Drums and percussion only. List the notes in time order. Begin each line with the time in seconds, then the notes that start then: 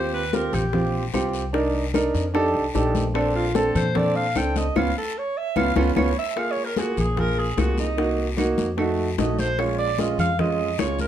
0.13 high bongo, high conga
0.33 high bongo, high conga, short guiro
0.53 high bongo, high conga, low conga, short guiro, claves
0.73 high bongo, high conga, low conga, long guiro
0.94 high conga
1.14 high bongo, low bongo, high conga, short guiro, claves
1.34 high bongo, short guiro
1.54 high bongo, high conga, long guiro
1.74 high bongo, high conga
1.94 high bongo, high conga, short guiro, claves
2.14 high bongo, high conga, short guiro
2.35 high bongo, high conga, long guiro, claves
2.55 high conga
2.75 high bongo, low bongo, high conga, short guiro
2.95 high bongo, high conga, short guiro
3.15 high bongo, high conga, long guiro, claves
3.35 high bongo, high conga
3.55 high bongo, high conga, short guiro
3.75 high bongo, high conga, low conga, short guiro, claves
3.95 high bongo, high conga, low conga, long guiro
4.15 high conga
4.35 high bongo, low bongo, high conga, short guiro, claves
4.56 high bongo, high conga, short guiro
4.76 low bongo, high conga, long guiro, claves
5.56 low bongo, high conga, long guiro, claves
5.76 low bongo, high conga, long guiro, claves
5.96 low bongo, high conga, long guiro, claves
6.36 high bongo, high conga, claves
6.57 high conga
6.76 high bongo, high conga, short guiro
6.97 low conga, short guiro, claves
7.17 high bongo, high conga, low conga, long guiro
7.38 high conga
7.58 high bongo, low bongo, high conga, short guiro, claves
7.78 high conga, short guiro
7.98 high bongo, high conga, long guiro
8.18 high bongo, high conga
8.38 high bongo, high conga, short guiro, claves
8.58 high bongo, high conga, short guiro
8.78 high bongo, high conga, long guiro, claves
8.98 high conga
9.18 high bongo, low bongo, high conga, short guiro
9.39 high bongo, high conga, short guiro
9.59 high bongo, high conga, long guiro, claves
9.79 high conga
9.98 high bongo, high conga, short guiro
10.19 low conga, short guiro, claves
10.39 high bongo, high conga, low conga, long guiro
10.79 high bongo, low bongo, high conga, short guiro, claves
10.99 high conga, short guiro